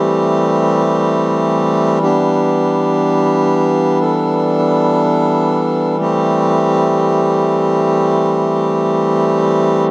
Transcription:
0.00 9.91 E3 medium
0.00 9.91 G3 medium
0.00 1.99 A3 medium
0.00 1.99 C4 medium
0.00 1.99 G4 loud
2.02 5.95 B3 medium
2.02 5.95 D4 medium
2.02 3.99 G4 medium
4.01 5.97 A4 loud
5.99 9.91 A3 medium
5.99 9.91 C4 medium
5.99 9.91 G4 loud

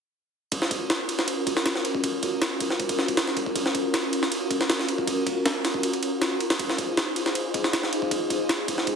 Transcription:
0.52 kick loud
0.52 ride medium
0.62 snare soft
0.71 kick medium
0.71 ride medium
0.90 snare loud
0.90 ride medium
1.08 1.82 C#4 medium
1.08 1.82 F4 medium
1.08 1.82 F#4 medium
1.08 1.83 A#4 loud
1.08 ride medium
1.19 snare medium
1.28 ride medium
1.47 kick medium
1.47 ride medium
1.57 snare medium
1.66 snare loud
1.66 ride medium
1.75 snare soft
1.85 ride medium
1.95 kick medium
2.04 kick loud
2.04 ride medium
2.23 kick medium
2.23 ride medium
2.42 snare loud
2.42 ride medium
2.60 3.34 C#4 medium
2.60 3.34 F4 medium
2.60 3.34 F#4 medium
2.60 3.34 A#4 loud
2.60 kick loud
2.60 ride medium
2.70 snare soft
2.80 kick medium
2.80 ride medium
2.89 kick medium
2.89 ride medium
2.99 snare soft
3.08 kick medium
3.08 ride medium
3.17 snare loud
3.17 ride medium
3.27 snare soft
3.37 kick medium
3.37 ride medium
3.46 kick medium
3.56 kick loud
3.56 ride medium
3.66 snare soft
3.75 kick medium
3.75 ride medium
3.94 snare loud
3.94 ride medium
4.13 4.87 C#4 medium
4.13 4.87 F4 medium
4.13 4.87 F#4 medium
4.13 4.86 A#4 loud
4.13 ride medium
4.23 snare medium
4.32 ride medium
4.51 kick medium
4.51 ride medium
4.61 snare medium
4.70 snare loud
4.70 ride medium
4.79 snare soft
4.88 ride medium
4.98 kick medium
5.07 kick loud
5.07 ride medium
5.27 kick medium
5.27 ride medium
5.46 snare loud
5.46 ride medium
5.65 snare medium
5.65 ride medium
5.74 kick medium
5.83 ride medium
5.93 ride soft
6.03 ride medium
6.22 snare loud
6.22 ride medium
6.40 ride medium
6.50 snare medium
6.50 ride medium
6.59 kick loud
6.59 ride medium
6.70 snare soft
6.78 kick medium
6.78 ride medium
6.97 snare loud
6.97 ride medium
7.16 7.90 D#4 medium
7.16 7.90 F4 medium
7.16 7.90 G#4 medium
7.16 7.90 C5 loud
7.16 ride medium
7.26 snare medium
7.35 ride medium
7.54 kick medium
7.54 ride medium
7.64 snare medium
7.73 snare loud
7.73 ride medium
7.83 snare soft
7.93 ride medium
8.02 kick medium
8.11 kick loud
8.11 ride medium
8.30 kick medium
8.30 ride medium
8.49 snare loud
8.49 ride medium
8.68 8.96 D#4 medium
8.68 8.96 F4 medium
8.68 8.96 G#4 medium
8.68 8.96 C5 loud
8.68 kick medium
8.68 ride medium
8.78 snare soft
8.87 kick medium
8.87 ride medium

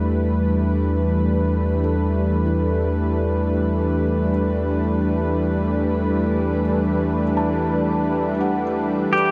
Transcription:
0.00 9.07 E2 medium
0.00 9.31 E3 medium
0.00 9.31 G3 medium
0.00 9.31 A3 medium
0.00 9.31 D4 medium
0.00 4.28 G4 medium
0.00 9.31 B4 medium
1.84 6.61 A4 medium
2.46 7.23 E3 medium
7.37 8.61 A5 medium
8.34 9.31 E4 soft
8.41 9.31 F#5 medium
9.12 9.31 E2 medium
9.12 9.31 G4 loud
9.12 9.31 G4 medium

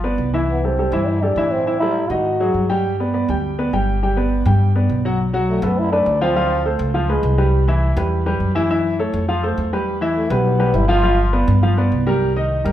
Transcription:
0.00 0.16 G1 medium
0.00 0.28 B3 medium
0.00 0.28 B4 medium
0.04 0.28 D5 medium
0.18 0.87 C2 medium
0.33 0.58 E3 medium
0.33 0.58 E4 medium
0.33 0.58 E5 medium
0.51 0.66 B3 medium
0.64 0.76 G3 medium
0.64 1.10 C4 medium
0.64 0.76 G4 medium
0.64 0.76 A4 medium
0.79 0.90 G3 medium
0.79 0.91 G4 medium
0.79 0.91 A4 medium
0.92 1.33 G2 medium
0.92 1.17 E3 medium
0.92 1.17 E4 medium
0.92 1.17 E5 medium
1.09 1.25 E4 medium
1.22 1.34 G3 medium
1.22 1.53 D4 medium
1.22 1.35 G4 medium
1.22 1.35 A4 medium
1.36 2.04 A2 medium
1.36 1.61 E3 medium
1.36 1.61 E4 medium
1.36 1.61 E5 medium
1.52 1.79 C4 medium
1.67 1.78 E3 medium
1.67 1.79 E4 medium
1.67 1.79 E5 medium
1.80 2.05 G3 medium
1.80 2.12 E4 medium
1.80 2.05 G4 medium
1.80 2.05 A4 medium
2.10 2.51 G#2 medium
2.10 2.35 D#3 medium
2.10 2.35 D#4 medium
2.10 2.69 F#4 medium
2.10 2.35 D#5 medium
2.40 2.64 F#3 medium
2.40 2.64 F#4 medium
2.40 2.65 G#4 medium
2.54 3.22 G2 medium
2.69 2.93 G3 medium
2.69 2.94 G4 medium
2.69 2.94 G5 medium
3.00 3.11 B3 medium
3.00 3.12 B4 medium
3.00 3.12 D5 medium
3.14 3.26 B3 medium
3.14 3.26 B4 medium
3.14 3.26 D5 medium
3.28 3.69 D2 medium
3.28 3.53 G3 medium
3.28 3.53 G4 medium
3.28 3.53 G5 medium
3.58 3.70 B3 medium
3.58 3.70 B4 medium
3.58 3.70 D5 medium
3.73 4.40 G1 medium
3.73 3.97 G3 medium
3.73 3.97 G4 medium
3.73 3.97 G5 medium
4.03 4.14 G3 medium
4.03 4.14 G4 medium
4.03 4.15 G5 medium
4.16 4.40 B3 medium
4.16 4.41 B4 medium
4.16 4.41 D5 medium
4.45 4.86 G2 loud
4.45 4.70 G3 medium
4.45 4.70 G4 medium
4.45 4.70 G5 medium
4.75 4.99 B3 medium
4.75 4.99 B4 medium
4.75 4.99 D5 medium
4.89 5.57 B1 medium
5.05 5.17 F#3 medium
5.05 5.17 F#4 medium
5.05 5.17 F#5 medium
5.33 5.57 F#3 medium
5.33 5.58 F#4 medium
5.33 5.58 F#5 medium
5.50 5.66 A3 medium
5.62 6.03 F#2 loud
5.62 5.87 A3 medium
5.62 5.80 B3 medium
5.62 5.87 A4 medium
5.62 5.87 B4 medium
5.79 5.92 E4 loud
5.92 6.16 A3 medium
5.92 6.19 D4 medium
5.92 6.16 A4 medium
5.92 6.16 B4 medium
6.06 6.74 D2 medium
6.21 6.33 F3 medium
6.21 6.76 C4 medium
6.21 6.33 F4 medium
6.21 6.33 F5 medium
6.36 6.60 F3 medium
6.36 6.60 F4 medium
6.36 6.60 F5 medium
6.65 6.89 A3 medium
6.65 6.89 A4 medium
6.65 6.89 C5 medium
6.79 7.20 C#2 loud
6.94 7.06 F3 medium
6.94 7.06 F4 medium
6.94 7.06 F5 medium
7.09 7.33 G#3 medium
7.09 7.33 G#4 medium
7.09 7.33 B4 medium
7.23 7.91 C2 medium
7.38 7.62 G3 medium
7.38 7.62 G4 medium
7.38 7.62 B4 medium
7.68 7.91 E3 medium
7.68 7.92 E4 medium
7.68 7.92 E5 medium
7.96 8.37 E2 loud
7.96 8.20 G3 medium
7.96 8.21 G4 medium
7.96 8.21 B4 medium
8.26 8.50 G3 medium
8.26 8.50 G4 medium
8.26 8.50 B4 medium
8.40 9.08 F#2 medium
8.55 8.67 E3 medium
8.55 8.67 E4 medium
8.55 8.67 E5 medium
8.70 8.94 E3 medium
8.70 8.94 E4 medium
8.70 8.94 E5 medium
8.99 9.23 A3 medium
8.99 9.23 A4 medium
8.99 9.23 C#5 medium
9.13 9.54 F2 loud
9.28 9.40 F3 medium
9.28 9.40 F4 medium
9.28 9.41 F5 medium
9.43 9.67 A3 medium
9.43 9.67 A4 medium
9.43 9.68 C5 medium
9.57 10.25 E2 medium
9.73 9.96 G3 medium
9.73 9.97 G4 medium
9.73 9.97 B4 medium
10.01 10.25 E3 medium
10.01 10.25 E4 medium
10.01 10.26 E5 medium
10.16 10.33 A3 medium
10.30 10.71 B1 loud
10.30 10.55 G3 medium
10.30 10.77 B3 loud
10.30 10.55 G4 medium
10.30 10.55 B4 medium
10.59 10.84 G3 medium
10.59 10.84 G4 medium
10.59 10.84 B4 medium
10.74 11.42 G1 medium
10.74 10.90 E4 loud
10.88 11.01 F3 medium
10.88 11.01 F4 medium
10.88 11.18 F4 loud
10.88 11.01 F5 medium
11.03 11.27 F3 medium
11.03 11.28 F4 medium
11.03 11.28 F5 medium
11.33 11.57 B3 medium
11.33 11.57 B4 medium
11.33 11.57 D5 medium
11.48 11.89 G2 loud
11.63 11.75 F3 medium
11.63 11.75 F4 medium
11.63 11.75 F5 medium
11.77 12.01 B3 medium
11.77 12.02 B4 medium
11.77 12.02 D5 medium
11.92 12.60 C2 medium
12.06 12.31 G3 medium
12.06 12.31 G4 medium
12.06 12.31 A#4 medium
12.36 12.60 D#3 medium
12.36 12.60 D#4 medium
12.36 12.60 D#5 medium
12.64 12.72 G2 loud
12.64 12.72 G3 medium
12.64 12.72 G4 medium
12.64 12.72 A#4 medium

